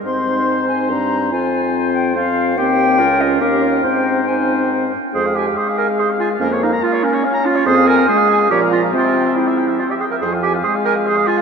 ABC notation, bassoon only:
X:1
M:3/4
L:1/8
Q:1/4=142
K:Ab
V:1 name="Bassoon" clef=bass
A,,4 G,,2 | F,,6 | E,,2 D,,2 E,,2 | A,,4- A,, z |
[K:Fm] F,,2 z4 | F,,2 z4 | F,,2 z2 B,,2 | C,2 z4 |
F,,2 z4 |]